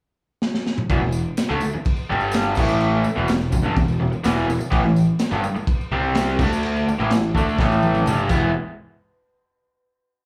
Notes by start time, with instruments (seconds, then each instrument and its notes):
0.42 snare
0.55 snare
0.66 snare
0.78 mid tom
0.90 picked electric bass E1, overdriven electric guitar E2 B2, kick, tambourine, crash
1.01 picked electric bass E1, overdriven electric guitar E2 B2
1.12 tambourine
1.37 snare, tambourine, crash
1.50 picked electric bass D2, overdriven electric guitar D3 A3, tambourine
1.61 muted overdriven electric guitar stroke, muted picked electric bass stroke, tambourine
1.73 muted overdriven electric guitar stroke, muted picked electric bass stroke, tambourine
1.85 kick, tambourine, crash
1.97 tambourine
2.10 picked electric bass G1, overdriven electric guitar G2 D3 G3
2.20 tambourine
2.32 snare, tambourine, crash
2.44 tambourine
2.55 picked electric bass A1, overdriven electric guitar A2 E3 A3, kick, tambourine, crash
2.68 tambourine
2.80 tambourine, crash
3.04 muted overdriven electric guitar stroke, muted picked electric bass stroke, tambourine
3.16 picked electric bass E1, overdriven electric guitar E2 B2
3.28 picked electric bass E1, overdriven electric guitar E2 B2, snare, tambourine, crash
3.41 tambourine
3.52 picked electric bass E1, overdriven electric guitar E2 B2, kick, tambourine
3.64 picked electric bass G1, overdriven electric guitar G2 D3, tambourine
3.76 picked electric bass E1, overdriven electric guitar E2 B2, kick, tambourine, crash
3.88 tambourine
4.00 picked electric bass E1, overdriven electric guitar E2 B2
4.12 muted overdriven electric guitar stroke, muted picked electric bass stroke, tambourine
4.24 picked electric bass E1, overdriven electric guitar E2 B2 E3, snare, tambourine, crash
4.38 tambourine
4.48 picked electric bass E1, overdriven electric guitar E2 B2, tambourine
4.60 muted overdriven electric guitar stroke, muted picked electric bass stroke, tambourine
4.71 picked electric bass A1, overdriven electric guitar A2 E3, kick, tambourine, crash
4.83 picked electric bass A1, overdriven electric guitar A2 E3
4.96 tambourine
5.19 snare, tambourine, crash
5.31 picked electric bass G1, overdriven electric guitar G2 D3, tambourine
5.43 muted overdriven electric guitar stroke, muted picked electric bass stroke, tambourine
5.56 muted overdriven electric guitar stroke, muted picked electric bass stroke, tambourine
5.67 kick, tambourine, crash
5.81 tambourine
5.92 picked electric bass C2, overdriven electric guitar C3 G3 C4
6.15 snare, tambourine, crash
6.39 picked electric bass D2, overdriven electric guitar D3 A3 D4, kick, tambourine, crash
6.53 tambourine
6.63 tambourine, crash
6.76 tambourine
6.88 muted overdriven electric guitar stroke, muted picked electric bass stroke, tambourine
6.99 picked electric bass A1, overdriven electric guitar A2 E3
7.10 picked electric bass A1, overdriven electric guitar A2 E3, snare, tambourine, crash
7.24 tambourine
7.35 picked electric bass D2, overdriven electric guitar D3 A3 D4, kick, tambourine
7.49 tambourine
7.59 picked electric bass A1, overdriven electric guitar A2 E3 A3, kick, snare, tambourine
7.72 tambourine
7.83 high tom, tambourine
7.95 high tom, tambourine
8.06 picked electric bass G1, overdriven electric guitar G2 D3 G3, mid tom, tambourine
8.19 tambourine
8.29 picked electric bass E1, overdriven electric guitar E3 G#3 B3 E4, kick, crash, tambourine